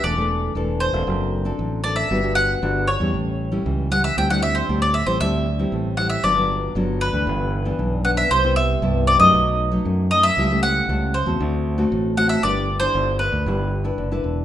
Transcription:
<<
  \new Staff \with { instrumentName = "Mandolin" } { \time 4/4 \key g \major \tempo 4 = 116 d''4 r8 c''2 d''16 e''16~ | e''8 fis''4 cis''4. r8 fis''16 e''16 | g''16 fis''16 e''16 c''8 d''16 e''16 c''16 e''4. fis''16 e''16 | d''4 r8 b'2 fis''16 e''16 |
c''8 e''4 d''16 ees''4.~ ees''16 dis''16 e''16~ | e''8 fis''4 c''4. r8 fis''16 e''16 | d''8. c''8. b'2 r8 | }
  \new Staff \with { instrumentName = "Nylon-string guitar" } { \time 4/4 \key g \major << { <a d' a'>16 <a d' a'>8. <a d' a'>8. <c' d' a'>4 <c' d' a'>8. <c' d' a'>8 | <b d' fis'>16 <b d' fis'>8. <b d' fis'>8 r16 <g cis' e'>4 <g cis' e'>8. <g cis' e'>16 r16 | <g c' e'>16 <g c' e'>8. <g c' e'>8 r16 <g c' e'>16 <g c' e'>8 r16 <g c' e'>8. <g c' e'>8 | <fis b d'>16 <fis b d'>8. <fis b d'>8. <e b d'>4 <e b d'>8. <e b d'>8 |
<g b e'>16 <g b e'>8. <g b e'>8. <fis a ees'>4 <fis a dis'>8. <fis a dis'>16 r16 | <g a e'>16 <g a e'>8. <g a e'>8 r16 <a c' fis'>4 <a c' fis'>8. <a c' fis'>8 | <d' e' b'>8 r16 <d' e'>8. <d' e' b'>16 r16 <d' e' b'>8 r16 <d' e' b'>8 <d' e' b'>8. | } \\ { e4 e4 fis4 fis4 | g4 d4 a,4 e4 | d4 a,4 d4 a,4 | g,4 d4 g,4 g,4 |
c4 g,4 b,4 fis,4 | cis4 cis4 d4 a,4 | g4 d4 g4 d4 | } >> }
  \new Staff \with { instrumentName = "Fingered electric bass" } { \clef bass \time 4/4 \key g \major e,,4 e,,8. e,,16 fis,,4 a,,4 | g,,4 g,,8. e,16 a,,4 cis,4 | d,4 d,8. a,,16 d,4 a,,4 | g,,4 g,,8. d,16 g,,4 b,,4 |
c,4 c,8. fis,16 b,,4 fis,4 | cis,4 cis,8. e,16 d,4 a,,4 | g,,4 g,,8. d,16 g,,4 fis,,8 e,,8 | }
>>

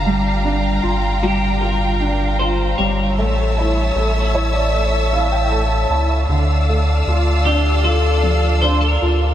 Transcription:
<<
  \new Staff \with { instrumentName = "String section" } { \time 4/4 \key d \minor \tempo 4 = 77 <f'' g'' bes''>1 | <cis'' e'' a'' e'''>1 | <d'' f'' a'' e'''>1 | }
  \new Staff \with { instrumentName = "Clean electric guitar" } { \time 4/4 \key d \minor r4. g'8 bes'4 c''8 cis''8~ | cis''4. r2 r8 | r4. g'8 a'4 c''16 bes'8. | }
  \new Staff \with { instrumentName = "Grand piano" } { \time 4/4 \key d \minor << { r1 | r4. cis''16 d''16 e''8 f''16 g''16 a''8 a''8 | r1 | } \\ { g8 d'8 f'8 g8 f'8 d'8 f'8 g8 | a8 e'8 a8 e'8 a8 e'8 a8 e'8 | d8 a8 f'8 d'8 f'8 f8 d'8 f'8 | } >> }
  \new Staff \with { instrumentName = "Sub bass" } { \clef bass \time 4/4 \key d \minor g,,4 g,,2~ g,,8 g,,8 | a,,4 a,,2~ a,,8 cis,8 | d,4 d,2~ d,8 d,8 | }
>>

